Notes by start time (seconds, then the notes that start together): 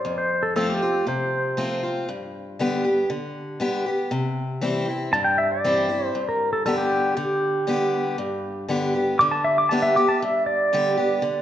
Already playing: C5
0.05 F2
0.18 C5
0.43 A4
0.56 F3 A3 C4 F4 A4
0.69 G4
0.82 C4 F4
1.07 C3 C5
1.57 F3 A3 C4 F4
1.83 C4 F4
2.09 G2
2.59 D3 G3 B3 G4
2.84 B3 G4
3.10 D3
3.60 D3 G3 B3 G4
3.86 B3 G4
4.11 C3
4.61 E3 G3 C4 E4
4.87 C4 E4
5.13 G2 A5
5.24 G5
5.38 E5
5.51 D5
5.64 E3 G3 C4 E4
5.89 C4 E4
6.06 C5
6.15 G2
6.29 A#4
6.53 A4
6.66 D3 G3 B3 G4 A4
6.78 G4
7.17 D3 G4
7.67 D3 G3 B3 G4
8.18 G2
8.68 D3 G3 B3 G4
8.95 B3 G4
9.19 D3 D6
9.32 A5
9.44 E5
9.58 D6
9.69 D3 G3 B3 G4 A5
9.82 E5
9.96 B3 G4 D6
10.09 A5
10.20 G2 E5
10.46 D5
10.73 D3 G3 B3 G4
10.97 B3 G4
11.22 D3